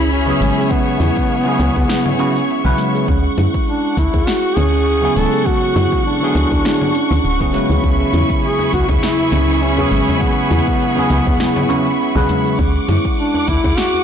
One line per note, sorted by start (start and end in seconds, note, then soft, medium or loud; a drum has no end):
0.00 0.33 C#2 medium
0.00 3.04 G#4 medium
0.00 3.04 C#5 medium
0.00 3.04 E5 medium
0.00 0.68 B5 medium
0.00 impact medium
0.12 0.73 C#4 loud
0.12 cabasa soft
0.26 1.42 C#3 medium
0.26 1.42 F#3 medium
0.26 1.43 B3 medium
0.26 1.43 E4 medium
0.26 1.44 G#4 medium
0.41 0.51 G#1 loud
0.41 0.56 G#3 loud
0.41 closed hi-hat medium
0.41 cabasa medium
0.58 0.65 G#4 medium
0.58 cabasa soft
0.71 2.79 B3 loud
0.71 0.86 C#4 medium
0.71 14.04 C#6 medium
0.71 kick loud
0.71 cabasa soft
1.00 1.10 E2 medium
1.00 1.16 E4 medium
1.00 closed hi-hat medium
1.00 low conga medium
1.00 cabasa medium
1.17 kick loud
1.17 cabasa soft
1.30 cabasa soft
1.45 2.16 C#3 medium
1.45 2.16 F#3 medium
1.45 2.17 B3 medium
1.45 2.17 E4 medium
1.45 2.18 G#4 medium
1.59 1.70 C#2 loud
1.59 closed hi-hat medium
1.59 cabasa medium
1.76 1.85 C#2 medium
1.76 1.84 G#4 medium
1.76 kick medium
1.76 cabasa soft
1.89 2.18 E4 medium
1.89 snare medium
1.89 cabasa soft
2.06 low conga medium
2.18 2.36 C#3 medium
2.18 2.36 F#3 medium
2.18 2.36 B3 medium
2.18 2.34 C#4 medium
2.18 2.36 E4 medium
2.18 2.37 F#4 medium
2.18 closed hi-hat medium
2.18 cabasa medium
2.35 2.43 C#4 medium
2.35 cabasa soft
2.49 cabasa soft
2.64 2.73 B1 medium
2.64 3.06 C#3 medium
2.64 3.06 F#3 medium
2.64 3.07 B3 medium
2.64 3.07 E4 medium
2.64 3.07 B4 loud
2.78 2.93 G#3 loud
2.78 closed hi-hat loud
2.78 cabasa medium
2.95 3.02 G#4 medium
2.95 cabasa soft
3.08 3.28 D2 loud
3.08 3.24 C#4 medium
3.08 7.80 F#5 medium
3.08 kick loud
3.08 cabasa soft
3.38 3.48 F#2 medium
3.38 3.54 E4 loud
3.38 closed hi-hat medium
3.38 low conga medium
3.38 cabasa medium
3.54 kick loud
3.54 cabasa medium
3.68 3.95 D4 medium
3.68 cabasa soft
3.97 4.08 D2 loud
3.97 4.29 E4 medium
3.97 kick medium
3.97 closed hi-hat medium
3.97 cabasa medium
4.14 4.22 D2 medium
4.14 4.21 G#4 medium
4.14 kick loud
4.14 cabasa soft
4.27 4.56 E4 medium
4.27 4.58 F#4 loud
4.27 snare medium
4.27 cabasa soft
4.57 5.08 D2 medium
4.57 4.72 C#4 loud
4.57 5.18 G#4 loud
4.57 closed hi-hat medium
4.57 low conga medium
4.57 cabasa medium
4.73 4.81 C#4 medium
4.73 cabasa soft
4.87 cabasa soft
5.01 6.17 C#3 medium
5.01 6.17 F#3 medium
5.01 6.18 B3 medium
5.01 6.18 E4 medium
5.01 6.19 G#4 loud
5.16 5.27 D1 medium
5.16 5.31 G#3 loud
5.16 5.47 A4 loud
5.16 closed hi-hat medium
5.16 cabasa medium
5.33 5.40 G#4 medium
5.33 cabasa soft
5.46 5.62 C#4 medium
5.46 6.05 F#4 loud
5.46 kick loud
5.46 cabasa soft
5.75 5.86 F#2 medium
5.75 5.91 E4 medium
5.75 closed hi-hat medium
5.75 low conga medium
5.75 cabasa medium
5.92 kick loud
5.92 cabasa soft
6.06 7.50 D4 medium
6.06 cabasa soft
6.20 6.91 D3 medium
6.20 6.91 F#3 medium
6.20 6.92 B3 medium
6.20 6.93 E4 medium
6.24 6.93 G#4 loud
6.35 6.45 D2 loud
6.35 closed hi-hat medium
6.35 cabasa medium
6.52 6.60 D2 medium
6.52 6.59 G#4 medium
6.52 kick loud
6.52 cabasa soft
6.65 6.93 E4 medium
6.65 snare medium
6.65 cabasa soft
6.82 low conga medium
6.95 7.10 C#4 medium
6.95 closed hi-hat medium
6.95 cabasa medium
7.11 7.19 D2 loud
7.11 7.19 C#4 medium
7.11 cabasa soft
7.24 7.61 D1 medium
7.24 cabasa soft
7.40 7.50 C#3 medium
7.40 7.51 F#3 medium
7.40 7.51 B3 medium
7.40 7.51 E4 medium
7.40 7.51 G#4 medium
7.40 kick medium
7.52 9.73 C#3 medium
7.52 9.74 F#3 medium
7.52 7.69 G#3 loud
7.52 9.74 B3 medium
7.52 9.75 E4 medium
7.52 closed hi-hat medium
7.52 cabasa medium
7.56 9.75 B4 medium
7.70 7.78 D2 loud
7.70 7.78 G#4 medium
7.70 cabasa soft
7.83 8.04 C#2 loud
7.83 8.00 C#4 medium
7.83 12.55 G#4 medium
7.83 12.55 E5 medium
7.83 12.55 B5 medium
7.83 kick loud
7.83 cabasa soft
8.13 8.24 E2 medium
8.13 8.29 E4 loud
8.13 closed hi-hat medium
8.13 djembe slap soft
8.13 low conga medium
8.13 cabasa medium
8.30 kick loud
8.30 cabasa soft
8.44 8.71 G#4 loud
8.44 cabasa soft
8.59 djembe tone medium
8.73 8.83 C#2 medium
8.73 8.87 F#4 loud
8.73 kick medium
8.73 closed hi-hat medium
8.73 djembe tone medium
8.73 cabasa medium
8.88 8.98 C#2 medium
8.88 8.97 G#4 medium
8.88 kick loud
8.88 djembe slap medium
8.88 djembe bass medium
8.88 cabasa soft
9.03 9.31 E4 medium
9.03 9.63 E4 loud
9.03 snare medium
9.03 cabasa soft
9.19 djembe tone medium
9.32 9.84 C#2 medium
9.32 9.48 C#4 loud
9.32 closed hi-hat medium
9.32 djembe slap medium
9.32 low conga medium
9.32 cabasa medium
9.49 9.56 C#4 medium
9.49 djembe slap soft
9.49 cabasa soft
9.62 10.22 C#4 loud
9.62 cabasa soft
9.77 10.92 C#3 medium
9.77 10.93 F#3 medium
9.77 10.93 B3 medium
9.77 10.94 E4 medium
9.77 9.90 G#4 loud
9.77 10.94 G#4 loud
9.77 djembe bass medium
9.92 10.02 G#1 medium
9.92 10.06 G#3 medium
9.92 closed hi-hat medium
9.92 djembe slap soft
9.92 cabasa medium
10.08 10.16 G#4 medium
10.08 djembe tone medium
10.08 djembe bass loud
10.08 cabasa soft
10.21 12.29 B3 medium
10.21 10.37 C#4 medium
10.21 kick loud
10.21 cabasa soft
10.51 10.61 E2 medium
10.51 10.67 E4 loud
10.51 closed hi-hat medium
10.51 djembe slap soft
10.51 low conga medium
10.51 cabasa medium
10.67 kick loud
10.67 cabasa soft
10.81 cabasa soft
10.95 11.66 C#3 medium
10.95 11.67 F#3 medium
10.95 11.67 B3 medium
10.95 11.68 E4 medium
10.95 djembe tone medium
10.99 11.68 G#4 loud
11.10 11.21 C#2 loud
11.10 closed hi-hat medium
11.10 cabasa medium
11.27 11.35 C#2 medium
11.27 11.34 G#4 medium
11.27 kick medium
11.27 djembe slap medium
11.27 djembe bass medium
11.27 cabasa soft
11.40 11.68 E4 medium
11.40 snare medium
11.40 cabasa soft
11.56 djembe slap medium
11.56 low conga medium
11.68 11.86 C#3 medium
11.68 11.86 F#3 medium
11.68 11.87 B3 medium
11.68 11.85 C#4 loud
11.68 11.87 E4 medium
11.68 11.87 F#4 medium
11.68 closed hi-hat medium
11.68 djembe tone medium
11.68 cabasa medium
11.86 11.94 C#4 medium
11.86 cabasa soft
12.00 cabasa soft
12.15 12.24 B1 medium
12.15 12.57 C#3 medium
12.15 12.57 F#3 medium
12.15 12.57 B3 medium
12.15 12.58 E4 medium
12.15 12.28 G#4 loud
12.15 12.58 B4 loud
12.15 djembe bass medium
12.29 12.44 G#3 loud
12.29 closed hi-hat medium
12.29 djembe bass medium
12.29 cabasa medium
12.46 12.53 G#4 medium
12.46 cabasa soft
12.59 12.79 D2 loud
12.59 12.75 C#4 medium
12.59 14.04 F#5 medium
12.59 14.04 D6 medium
12.59 kick loud
12.59 cabasa soft
12.88 12.99 F#2 medium
12.88 13.04 E4 loud
12.88 closed hi-hat loud
12.88 djembe slap soft
12.88 low conga medium
12.88 cabasa medium
13.05 kick loud
13.05 cabasa soft
13.18 13.49 D4 medium
13.18 cabasa soft
13.34 djembe tone medium
13.48 13.58 D2 loud
13.48 13.79 E4 loud
13.48 kick medium
13.48 closed hi-hat medium
13.48 djembe tone medium
13.48 cabasa medium
13.64 13.73 D2 medium
13.64 13.72 G#4 medium
13.64 kick medium
13.64 djembe slap medium
13.64 djembe bass medium
13.64 cabasa soft
13.77 14.04 E4 medium
13.77 14.04 F#4 loud
13.77 snare medium
13.77 cabasa soft
13.94 djembe tone medium